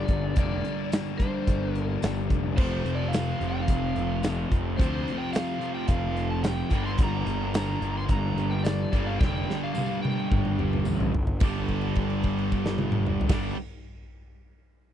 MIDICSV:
0, 0, Header, 1, 6, 480
1, 0, Start_track
1, 0, Key_signature, -2, "minor"
1, 0, Tempo, 552995
1, 312, Time_signature, 4, 2, 24, 8
1, 12964, End_track
2, 0, Start_track
2, 0, Title_t, "Electric slide guitar"
2, 0, Program_c, 0, 29
2, 0, Note_on_c, 0, 74, 101
2, 330, Note_off_c, 0, 74, 0
2, 341, Note_on_c, 0, 74, 93
2, 773, Note_off_c, 0, 74, 0
2, 1028, Note_on_c, 0, 72, 115
2, 1523, Note_off_c, 0, 72, 0
2, 1523, Note_on_c, 0, 70, 115
2, 1714, Note_off_c, 0, 70, 0
2, 2231, Note_on_c, 0, 72, 93
2, 2558, Note_on_c, 0, 74, 81
2, 2565, Note_off_c, 0, 72, 0
2, 2677, Note_on_c, 0, 77, 103
2, 2697, Note_off_c, 0, 74, 0
2, 3028, Note_off_c, 0, 77, 0
2, 3032, Note_on_c, 0, 79, 105
2, 3146, Note_off_c, 0, 79, 0
2, 3149, Note_on_c, 0, 77, 97
2, 3853, Note_off_c, 0, 77, 0
2, 4145, Note_on_c, 0, 72, 98
2, 4497, Note_on_c, 0, 79, 92
2, 4517, Note_off_c, 0, 72, 0
2, 4614, Note_off_c, 0, 79, 0
2, 4627, Note_on_c, 0, 77, 105
2, 4962, Note_off_c, 0, 77, 0
2, 4988, Note_on_c, 0, 79, 88
2, 5104, Note_off_c, 0, 79, 0
2, 5107, Note_on_c, 0, 77, 105
2, 5442, Note_off_c, 0, 77, 0
2, 5476, Note_on_c, 0, 81, 104
2, 5584, Note_off_c, 0, 81, 0
2, 5587, Note_on_c, 0, 79, 106
2, 5948, Note_off_c, 0, 79, 0
2, 5951, Note_on_c, 0, 84, 105
2, 6061, Note_off_c, 0, 84, 0
2, 6106, Note_on_c, 0, 82, 119
2, 6552, Note_off_c, 0, 82, 0
2, 6563, Note_on_c, 0, 82, 105
2, 6921, Note_off_c, 0, 82, 0
2, 6925, Note_on_c, 0, 84, 100
2, 7037, Note_off_c, 0, 84, 0
2, 7041, Note_on_c, 0, 82, 105
2, 7385, Note_on_c, 0, 79, 96
2, 7404, Note_off_c, 0, 82, 0
2, 7496, Note_on_c, 0, 74, 96
2, 7497, Note_off_c, 0, 79, 0
2, 7869, Note_on_c, 0, 77, 91
2, 7872, Note_off_c, 0, 74, 0
2, 7978, Note_off_c, 0, 77, 0
2, 7982, Note_on_c, 0, 79, 106
2, 8355, Note_off_c, 0, 79, 0
2, 8363, Note_on_c, 0, 77, 88
2, 8440, Note_off_c, 0, 77, 0
2, 8450, Note_on_c, 0, 77, 95
2, 8696, Note_off_c, 0, 77, 0
2, 8699, Note_on_c, 0, 79, 86
2, 9388, Note_off_c, 0, 79, 0
2, 12964, End_track
3, 0, Start_track
3, 0, Title_t, "Distorted electric guitar"
3, 0, Program_c, 1, 30
3, 0, Note_on_c, 1, 43, 99
3, 0, Note_on_c, 1, 50, 89
3, 0, Note_on_c, 1, 55, 96
3, 0, Note_on_c, 1, 58, 98
3, 0, Note_on_c, 1, 62, 101
3, 290, Note_off_c, 1, 43, 0
3, 292, Note_off_c, 1, 50, 0
3, 299, Note_off_c, 1, 55, 0
3, 302, Note_off_c, 1, 58, 0
3, 303, Note_off_c, 1, 62, 0
3, 331, Note_on_c, 1, 58, 100
3, 340, Note_on_c, 1, 62, 95
3, 2224, Note_off_c, 1, 58, 0
3, 2229, Note_off_c, 1, 62, 0
3, 2254, Note_on_c, 1, 60, 96
3, 2256, Note_on_c, 1, 57, 95
3, 4145, Note_off_c, 1, 60, 0
3, 4146, Note_off_c, 1, 57, 0
3, 4169, Note_on_c, 1, 57, 92
3, 4172, Note_on_c, 1, 60, 105
3, 5823, Note_off_c, 1, 57, 0
3, 5825, Note_off_c, 1, 60, 0
3, 5841, Note_on_c, 1, 58, 104
3, 5847, Note_on_c, 1, 62, 103
3, 7739, Note_off_c, 1, 58, 0
3, 7757, Note_off_c, 1, 62, 0
3, 7759, Note_on_c, 1, 58, 101
3, 7760, Note_on_c, 1, 62, 102
3, 9659, Note_off_c, 1, 58, 0
3, 9659, Note_off_c, 1, 62, 0
3, 9926, Note_on_c, 1, 59, 104
3, 9931, Note_on_c, 1, 62, 98
3, 9941, Note_on_c, 1, 67, 114
3, 11544, Note_off_c, 1, 59, 0
3, 11547, Note_off_c, 1, 62, 0
3, 11547, Note_on_c, 1, 59, 117
3, 11551, Note_on_c, 1, 62, 103
3, 11554, Note_off_c, 1, 67, 0
3, 11557, Note_on_c, 1, 67, 116
3, 11760, Note_off_c, 1, 59, 0
3, 11761, Note_off_c, 1, 62, 0
3, 11765, Note_off_c, 1, 67, 0
3, 12964, End_track
4, 0, Start_track
4, 0, Title_t, "Overdriven electric guitar"
4, 0, Program_c, 2, 29
4, 0, Note_on_c, 2, 43, 90
4, 0, Note_on_c, 2, 50, 89
4, 0, Note_on_c, 2, 55, 94
4, 299, Note_off_c, 2, 43, 0
4, 307, Note_off_c, 2, 50, 0
4, 313, Note_off_c, 2, 55, 0
4, 315, Note_on_c, 2, 43, 98
4, 329, Note_on_c, 2, 50, 101
4, 341, Note_on_c, 2, 55, 100
4, 1018, Note_off_c, 2, 43, 0
4, 1025, Note_off_c, 2, 50, 0
4, 1031, Note_off_c, 2, 55, 0
4, 1041, Note_on_c, 2, 55, 84
4, 1053, Note_on_c, 2, 50, 91
4, 1064, Note_on_c, 2, 43, 83
4, 1741, Note_off_c, 2, 55, 0
4, 1743, Note_off_c, 2, 43, 0
4, 1747, Note_off_c, 2, 50, 0
4, 1753, Note_on_c, 2, 43, 82
4, 1776, Note_on_c, 2, 50, 89
4, 1788, Note_on_c, 2, 55, 97
4, 2217, Note_off_c, 2, 43, 0
4, 2228, Note_off_c, 2, 50, 0
4, 2229, Note_on_c, 2, 41, 87
4, 2234, Note_off_c, 2, 55, 0
4, 2245, Note_on_c, 2, 48, 99
4, 2259, Note_on_c, 2, 53, 98
4, 2942, Note_off_c, 2, 48, 0
4, 2946, Note_off_c, 2, 53, 0
4, 2949, Note_on_c, 2, 53, 95
4, 2971, Note_on_c, 2, 48, 76
4, 2972, Note_off_c, 2, 41, 0
4, 2976, Note_on_c, 2, 41, 81
4, 3654, Note_off_c, 2, 53, 0
4, 3659, Note_off_c, 2, 41, 0
4, 3665, Note_off_c, 2, 48, 0
4, 3669, Note_on_c, 2, 41, 84
4, 3683, Note_on_c, 2, 48, 83
4, 3701, Note_on_c, 2, 53, 94
4, 4134, Note_off_c, 2, 41, 0
4, 4141, Note_off_c, 2, 48, 0
4, 4150, Note_off_c, 2, 53, 0
4, 4154, Note_on_c, 2, 41, 94
4, 4166, Note_on_c, 2, 48, 112
4, 4174, Note_on_c, 2, 53, 98
4, 4849, Note_off_c, 2, 53, 0
4, 4856, Note_off_c, 2, 41, 0
4, 4860, Note_on_c, 2, 53, 102
4, 4862, Note_off_c, 2, 48, 0
4, 4873, Note_on_c, 2, 48, 82
4, 4887, Note_on_c, 2, 41, 75
4, 5569, Note_off_c, 2, 53, 0
4, 5571, Note_off_c, 2, 41, 0
4, 5575, Note_off_c, 2, 48, 0
4, 5582, Note_on_c, 2, 41, 92
4, 5597, Note_on_c, 2, 48, 86
4, 5607, Note_on_c, 2, 53, 90
4, 5810, Note_off_c, 2, 41, 0
4, 5817, Note_off_c, 2, 48, 0
4, 5820, Note_on_c, 2, 43, 101
4, 5822, Note_off_c, 2, 53, 0
4, 5838, Note_on_c, 2, 50, 104
4, 5847, Note_on_c, 2, 55, 115
4, 6538, Note_off_c, 2, 50, 0
4, 6542, Note_off_c, 2, 43, 0
4, 6545, Note_on_c, 2, 43, 75
4, 6562, Note_on_c, 2, 50, 81
4, 6566, Note_off_c, 2, 55, 0
4, 6569, Note_on_c, 2, 55, 84
4, 7259, Note_off_c, 2, 55, 0
4, 7260, Note_off_c, 2, 50, 0
4, 7262, Note_on_c, 2, 55, 92
4, 7272, Note_on_c, 2, 50, 82
4, 7279, Note_off_c, 2, 43, 0
4, 7283, Note_on_c, 2, 43, 79
4, 7732, Note_off_c, 2, 43, 0
4, 7735, Note_off_c, 2, 50, 0
4, 7735, Note_on_c, 2, 43, 93
4, 7751, Note_on_c, 2, 50, 93
4, 7760, Note_off_c, 2, 55, 0
4, 7763, Note_on_c, 2, 55, 114
4, 8446, Note_off_c, 2, 43, 0
4, 8454, Note_off_c, 2, 50, 0
4, 8456, Note_on_c, 2, 43, 78
4, 8460, Note_off_c, 2, 55, 0
4, 8472, Note_on_c, 2, 50, 93
4, 8479, Note_on_c, 2, 55, 87
4, 9167, Note_off_c, 2, 43, 0
4, 9175, Note_off_c, 2, 50, 0
4, 9175, Note_off_c, 2, 55, 0
4, 9185, Note_on_c, 2, 55, 92
4, 9198, Note_on_c, 2, 50, 78
4, 9208, Note_on_c, 2, 43, 65
4, 9652, Note_off_c, 2, 55, 0
4, 9658, Note_off_c, 2, 50, 0
4, 9663, Note_off_c, 2, 43, 0
4, 9900, Note_on_c, 2, 43, 93
4, 9921, Note_on_c, 2, 50, 100
4, 9935, Note_on_c, 2, 55, 104
4, 11525, Note_off_c, 2, 43, 0
4, 11528, Note_on_c, 2, 43, 99
4, 11541, Note_off_c, 2, 50, 0
4, 11545, Note_on_c, 2, 50, 109
4, 11560, Note_off_c, 2, 55, 0
4, 11563, Note_on_c, 2, 55, 108
4, 11750, Note_off_c, 2, 43, 0
4, 11758, Note_off_c, 2, 50, 0
4, 11768, Note_off_c, 2, 55, 0
4, 12964, End_track
5, 0, Start_track
5, 0, Title_t, "Picked electric bass"
5, 0, Program_c, 3, 34
5, 74, Note_on_c, 3, 31, 91
5, 284, Note_off_c, 3, 31, 0
5, 323, Note_on_c, 3, 29, 101
5, 530, Note_off_c, 3, 29, 0
5, 1287, Note_on_c, 3, 31, 95
5, 1703, Note_off_c, 3, 31, 0
5, 1766, Note_on_c, 3, 31, 87
5, 1975, Note_off_c, 3, 31, 0
5, 2003, Note_on_c, 3, 29, 84
5, 2213, Note_off_c, 3, 29, 0
5, 2243, Note_on_c, 3, 29, 105
5, 2448, Note_off_c, 3, 29, 0
5, 2469, Note_on_c, 3, 29, 95
5, 2892, Note_off_c, 3, 29, 0
5, 2959, Note_on_c, 3, 29, 91
5, 3166, Note_off_c, 3, 29, 0
5, 3199, Note_on_c, 3, 29, 106
5, 3406, Note_off_c, 3, 29, 0
5, 3438, Note_on_c, 3, 29, 90
5, 3857, Note_off_c, 3, 29, 0
5, 3926, Note_on_c, 3, 29, 91
5, 4130, Note_off_c, 3, 29, 0
5, 4168, Note_on_c, 3, 38, 102
5, 4371, Note_off_c, 3, 38, 0
5, 5108, Note_on_c, 3, 29, 96
5, 5743, Note_off_c, 3, 29, 0
5, 5826, Note_on_c, 3, 31, 90
5, 6038, Note_off_c, 3, 31, 0
5, 6067, Note_on_c, 3, 31, 114
5, 6279, Note_off_c, 3, 31, 0
5, 6300, Note_on_c, 3, 31, 100
5, 6727, Note_off_c, 3, 31, 0
5, 6775, Note_on_c, 3, 31, 90
5, 6992, Note_off_c, 3, 31, 0
5, 7029, Note_on_c, 3, 31, 112
5, 7240, Note_off_c, 3, 31, 0
5, 7245, Note_on_c, 3, 31, 90
5, 7678, Note_off_c, 3, 31, 0
5, 7754, Note_on_c, 3, 31, 91
5, 7963, Note_off_c, 3, 31, 0
5, 7993, Note_on_c, 3, 29, 108
5, 8202, Note_off_c, 3, 29, 0
5, 8958, Note_on_c, 3, 31, 94
5, 9377, Note_off_c, 3, 31, 0
5, 9421, Note_on_c, 3, 33, 85
5, 9640, Note_off_c, 3, 33, 0
5, 9666, Note_on_c, 3, 31, 83
5, 9882, Note_off_c, 3, 31, 0
5, 9912, Note_on_c, 3, 31, 108
5, 11450, Note_off_c, 3, 31, 0
5, 11539, Note_on_c, 3, 31, 96
5, 11740, Note_off_c, 3, 31, 0
5, 12964, End_track
6, 0, Start_track
6, 0, Title_t, "Drums"
6, 70, Note_on_c, 9, 42, 86
6, 76, Note_on_c, 9, 36, 93
6, 157, Note_off_c, 9, 42, 0
6, 163, Note_off_c, 9, 36, 0
6, 311, Note_on_c, 9, 42, 118
6, 319, Note_on_c, 9, 36, 122
6, 398, Note_off_c, 9, 42, 0
6, 406, Note_off_c, 9, 36, 0
6, 561, Note_on_c, 9, 42, 86
6, 648, Note_off_c, 9, 42, 0
6, 798, Note_on_c, 9, 54, 108
6, 802, Note_off_c, 9, 54, 0
6, 802, Note_on_c, 9, 42, 116
6, 802, Note_on_c, 9, 54, 127
6, 811, Note_on_c, 9, 38, 127
6, 889, Note_off_c, 9, 42, 0
6, 889, Note_off_c, 9, 54, 0
6, 898, Note_off_c, 9, 38, 0
6, 1038, Note_on_c, 9, 36, 85
6, 1040, Note_on_c, 9, 42, 92
6, 1125, Note_off_c, 9, 36, 0
6, 1127, Note_off_c, 9, 42, 0
6, 1279, Note_on_c, 9, 36, 90
6, 1282, Note_on_c, 9, 42, 112
6, 1366, Note_off_c, 9, 36, 0
6, 1369, Note_off_c, 9, 42, 0
6, 1522, Note_on_c, 9, 42, 91
6, 1609, Note_off_c, 9, 42, 0
6, 1756, Note_on_c, 9, 54, 105
6, 1761, Note_off_c, 9, 54, 0
6, 1761, Note_on_c, 9, 42, 102
6, 1761, Note_on_c, 9, 54, 107
6, 1770, Note_on_c, 9, 38, 110
6, 1848, Note_off_c, 9, 42, 0
6, 1848, Note_off_c, 9, 54, 0
6, 1857, Note_off_c, 9, 38, 0
6, 1999, Note_on_c, 9, 36, 92
6, 2000, Note_on_c, 9, 42, 86
6, 2086, Note_off_c, 9, 36, 0
6, 2086, Note_off_c, 9, 42, 0
6, 2234, Note_on_c, 9, 49, 114
6, 2239, Note_on_c, 9, 36, 127
6, 2321, Note_off_c, 9, 49, 0
6, 2325, Note_off_c, 9, 36, 0
6, 2481, Note_on_c, 9, 42, 85
6, 2568, Note_off_c, 9, 42, 0
6, 2717, Note_on_c, 9, 54, 103
6, 2721, Note_off_c, 9, 54, 0
6, 2721, Note_on_c, 9, 42, 120
6, 2721, Note_on_c, 9, 54, 122
6, 2730, Note_on_c, 9, 38, 118
6, 2808, Note_off_c, 9, 42, 0
6, 2808, Note_off_c, 9, 54, 0
6, 2817, Note_off_c, 9, 38, 0
6, 2961, Note_on_c, 9, 42, 78
6, 3048, Note_off_c, 9, 42, 0
6, 3193, Note_on_c, 9, 42, 102
6, 3196, Note_on_c, 9, 36, 89
6, 3280, Note_off_c, 9, 42, 0
6, 3283, Note_off_c, 9, 36, 0
6, 3436, Note_on_c, 9, 42, 75
6, 3523, Note_off_c, 9, 42, 0
6, 3674, Note_on_c, 9, 54, 104
6, 3677, Note_off_c, 9, 54, 0
6, 3677, Note_on_c, 9, 42, 97
6, 3677, Note_on_c, 9, 54, 112
6, 3686, Note_on_c, 9, 38, 109
6, 3764, Note_off_c, 9, 42, 0
6, 3764, Note_off_c, 9, 54, 0
6, 3772, Note_off_c, 9, 38, 0
6, 3920, Note_on_c, 9, 36, 97
6, 3923, Note_on_c, 9, 42, 80
6, 4007, Note_off_c, 9, 36, 0
6, 4010, Note_off_c, 9, 42, 0
6, 4162, Note_on_c, 9, 36, 123
6, 4172, Note_on_c, 9, 42, 108
6, 4249, Note_off_c, 9, 36, 0
6, 4259, Note_off_c, 9, 42, 0
6, 4406, Note_on_c, 9, 42, 84
6, 4493, Note_off_c, 9, 42, 0
6, 4629, Note_on_c, 9, 54, 97
6, 4644, Note_off_c, 9, 54, 0
6, 4644, Note_on_c, 9, 42, 119
6, 4644, Note_on_c, 9, 54, 126
6, 4652, Note_on_c, 9, 38, 123
6, 4731, Note_off_c, 9, 42, 0
6, 4731, Note_off_c, 9, 54, 0
6, 4739, Note_off_c, 9, 38, 0
6, 4872, Note_on_c, 9, 42, 93
6, 4959, Note_off_c, 9, 42, 0
6, 5100, Note_on_c, 9, 42, 117
6, 5110, Note_on_c, 9, 36, 93
6, 5187, Note_off_c, 9, 42, 0
6, 5197, Note_off_c, 9, 36, 0
6, 5352, Note_on_c, 9, 42, 85
6, 5361, Note_on_c, 9, 38, 36
6, 5439, Note_off_c, 9, 42, 0
6, 5447, Note_off_c, 9, 38, 0
6, 5587, Note_on_c, 9, 42, 105
6, 5587, Note_on_c, 9, 54, 107
6, 5595, Note_on_c, 9, 38, 103
6, 5596, Note_off_c, 9, 54, 0
6, 5596, Note_on_c, 9, 54, 99
6, 5674, Note_off_c, 9, 42, 0
6, 5682, Note_off_c, 9, 38, 0
6, 5683, Note_off_c, 9, 54, 0
6, 5717, Note_on_c, 9, 38, 36
6, 5804, Note_off_c, 9, 38, 0
6, 5818, Note_on_c, 9, 42, 89
6, 5825, Note_on_c, 9, 36, 91
6, 5905, Note_off_c, 9, 42, 0
6, 5912, Note_off_c, 9, 36, 0
6, 6057, Note_on_c, 9, 42, 116
6, 6064, Note_on_c, 9, 36, 123
6, 6144, Note_off_c, 9, 42, 0
6, 6151, Note_off_c, 9, 36, 0
6, 6307, Note_on_c, 9, 42, 85
6, 6394, Note_off_c, 9, 42, 0
6, 6546, Note_on_c, 9, 42, 120
6, 6546, Note_on_c, 9, 54, 126
6, 6551, Note_off_c, 9, 54, 0
6, 6551, Note_on_c, 9, 54, 96
6, 6555, Note_on_c, 9, 38, 127
6, 6633, Note_off_c, 9, 42, 0
6, 6638, Note_off_c, 9, 54, 0
6, 6642, Note_off_c, 9, 38, 0
6, 6788, Note_on_c, 9, 42, 87
6, 6874, Note_off_c, 9, 42, 0
6, 7019, Note_on_c, 9, 42, 107
6, 7024, Note_on_c, 9, 36, 98
6, 7105, Note_off_c, 9, 42, 0
6, 7110, Note_off_c, 9, 36, 0
6, 7271, Note_on_c, 9, 42, 79
6, 7358, Note_off_c, 9, 42, 0
6, 7504, Note_on_c, 9, 54, 92
6, 7512, Note_off_c, 9, 54, 0
6, 7512, Note_on_c, 9, 42, 91
6, 7512, Note_on_c, 9, 54, 116
6, 7521, Note_on_c, 9, 38, 109
6, 7599, Note_off_c, 9, 42, 0
6, 7599, Note_off_c, 9, 54, 0
6, 7608, Note_off_c, 9, 38, 0
6, 7750, Note_on_c, 9, 36, 91
6, 7753, Note_on_c, 9, 42, 80
6, 7837, Note_off_c, 9, 36, 0
6, 7840, Note_off_c, 9, 42, 0
6, 7992, Note_on_c, 9, 36, 121
6, 8001, Note_on_c, 9, 38, 73
6, 8079, Note_off_c, 9, 36, 0
6, 8087, Note_off_c, 9, 38, 0
6, 8249, Note_on_c, 9, 38, 78
6, 8336, Note_off_c, 9, 38, 0
6, 8460, Note_on_c, 9, 54, 92
6, 8487, Note_on_c, 9, 48, 88
6, 8547, Note_off_c, 9, 54, 0
6, 8574, Note_off_c, 9, 48, 0
6, 8722, Note_on_c, 9, 48, 97
6, 8809, Note_off_c, 9, 48, 0
6, 8954, Note_on_c, 9, 36, 94
6, 8957, Note_on_c, 9, 47, 91
6, 9041, Note_off_c, 9, 36, 0
6, 9044, Note_off_c, 9, 47, 0
6, 9072, Note_on_c, 9, 47, 85
6, 9159, Note_off_c, 9, 47, 0
6, 9193, Note_on_c, 9, 45, 100
6, 9279, Note_off_c, 9, 45, 0
6, 9316, Note_on_c, 9, 45, 89
6, 9402, Note_off_c, 9, 45, 0
6, 9420, Note_on_c, 9, 54, 103
6, 9429, Note_on_c, 9, 45, 96
6, 9506, Note_off_c, 9, 54, 0
6, 9515, Note_off_c, 9, 45, 0
6, 9551, Note_on_c, 9, 43, 101
6, 9637, Note_off_c, 9, 43, 0
6, 9674, Note_on_c, 9, 43, 112
6, 9760, Note_off_c, 9, 43, 0
6, 9783, Note_on_c, 9, 43, 99
6, 9870, Note_off_c, 9, 43, 0
6, 9896, Note_on_c, 9, 57, 104
6, 9907, Note_on_c, 9, 36, 122
6, 9909, Note_on_c, 9, 54, 87
6, 9983, Note_off_c, 9, 57, 0
6, 9993, Note_off_c, 9, 36, 0
6, 9996, Note_off_c, 9, 54, 0
6, 10141, Note_on_c, 9, 57, 47
6, 10146, Note_on_c, 9, 36, 67
6, 10228, Note_off_c, 9, 57, 0
6, 10233, Note_off_c, 9, 36, 0
6, 10253, Note_on_c, 9, 49, 45
6, 10340, Note_off_c, 9, 49, 0
6, 10376, Note_on_c, 9, 57, 56
6, 10386, Note_on_c, 9, 36, 74
6, 10462, Note_off_c, 9, 57, 0
6, 10473, Note_off_c, 9, 36, 0
6, 10502, Note_on_c, 9, 49, 52
6, 10589, Note_off_c, 9, 49, 0
6, 10618, Note_on_c, 9, 57, 59
6, 10626, Note_on_c, 9, 36, 68
6, 10705, Note_off_c, 9, 57, 0
6, 10713, Note_off_c, 9, 36, 0
6, 10750, Note_on_c, 9, 49, 52
6, 10837, Note_off_c, 9, 49, 0
6, 10865, Note_on_c, 9, 57, 61
6, 10868, Note_on_c, 9, 36, 68
6, 10952, Note_off_c, 9, 57, 0
6, 10955, Note_off_c, 9, 36, 0
6, 10986, Note_on_c, 9, 38, 99
6, 11073, Note_off_c, 9, 38, 0
6, 11094, Note_on_c, 9, 48, 102
6, 11180, Note_off_c, 9, 48, 0
6, 11214, Note_on_c, 9, 47, 105
6, 11301, Note_off_c, 9, 47, 0
6, 11341, Note_on_c, 9, 45, 92
6, 11428, Note_off_c, 9, 45, 0
6, 11466, Note_on_c, 9, 43, 110
6, 11537, Note_on_c, 9, 57, 115
6, 11540, Note_on_c, 9, 36, 121
6, 11546, Note_on_c, 9, 38, 112
6, 11553, Note_off_c, 9, 43, 0
6, 11624, Note_off_c, 9, 57, 0
6, 11627, Note_off_c, 9, 36, 0
6, 11633, Note_off_c, 9, 38, 0
6, 12964, End_track
0, 0, End_of_file